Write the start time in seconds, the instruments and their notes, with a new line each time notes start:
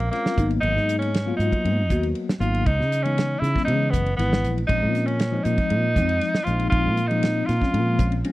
Already playing: tenor saxophone A#3
0.00 ride
0.11 tine electric piano G#3 C4 C#4 F4, tenor saxophone A#3, snare, ride
0.26 snare
0.37 fretless electric bass G#1, tine electric piano F#3 A#3 B3 D#4, kick, hi-hat pedal, ride
0.51 ride
0.61 fretless electric bass G#1, tenor saxophone D#4, ride
0.76 fretless electric bass G#2, snare
0.89 hi-hat pedal, ride
0.99 tenor saxophone C#4, ride
1.14 snare, ride
1.26 tine electric piano F#3 A#3 B3 F4
1.37 fretless electric bass G#2, tenor saxophone D#4, hi-hat pedal, ride
1.52 muted fretless electric bass stroke, kick, ride
1.65 fretless electric bass G#2, ride
1.90 fretless electric bass D#2, tine electric piano F#3 A#3 B3 F#4, kick, hi-hat pedal, ride
2.03 ride
2.15 ride
2.29 snare
2.40 fretless electric bass G#1, tine electric piano F#3 A#3 B3 D#4, tenor saxophone F4, hi-hat pedal, ride
2.55 ride
2.66 fretless electric bass C#2, tenor saxophone D#4, kick, ride
2.79 fretless electric bass C#3, snare
2.92 snare, hi-hat pedal, ride
3.03 tine electric piano E3 G#3 B3 D#4, tenor saxophone C#4, ride
3.18 snare, ride
3.39 fretless electric bass C#3, tenor saxophone E4
3.44 snare, hi-hat pedal, ride
3.54 tine electric piano E3 G#3 B3 C#4, muted fretless electric bass stroke, kick, snare
3.64 fretless electric bass C#3, tenor saxophone D#4, ride
3.90 fretless electric bass F#1, tenor saxophone B3, kick, hi-hat pedal, ride
4.06 ride
4.16 fretless electric bass G#1, tine electric piano E3 G#3 B3 E4, tenor saxophone B3, ride
4.20 snare
4.33 snare
4.44 fretless electric bass A#1, hi-hat pedal, ride
4.58 ride
4.67 fretless electric bass A#1, tine electric piano F3 G#3 C4 C#4, tenor saxophone D#4, kick, ride
4.83 fretless electric bass A#2
4.95 snare, hi-hat pedal, ride
5.06 tenor saxophone C#4, ride
5.19 snare, ride
5.32 tine electric piano F3 G#3 C4 D#4
5.44 fretless electric bass A#2, tenor saxophone D#4, hi-hat pedal, ride
5.58 kick, ride
5.70 fretless electric bass A#2, ride
5.95 fretless electric bass F2, tine electric piano F3 G#3 C4 D#4, kick, hi-hat pedal, ride
6.09 ride
6.21 snare, ride
6.35 snare
6.43 tine electric piano F3 G#3 C4 D#4, tenor saxophone F4, hi-hat pedal, ride
6.47 fretless electric bass A#1
6.60 ride
6.69 fretless electric bass A#1, tenor saxophone F4, kick, ride
6.86 fretless electric bass A#2
6.97 hi-hat pedal, ride
7.07 tine electric piano F3 G#3 C4 D#4, tenor saxophone D#4, ride
7.23 snare, ride
7.45 fretless electric bass A#2, tenor saxophone F4, hi-hat pedal, ride
7.50 snare
7.61 tine electric piano F3 G#3 C4 C#4, muted fretless electric bass stroke, kick, snare
7.74 fretless electric bass A#2, ride
7.99 fretless electric bass A#1, kick, hi-hat pedal, ride
8.12 ride
8.24 tine electric piano F3 G#3 C4 C#4, ride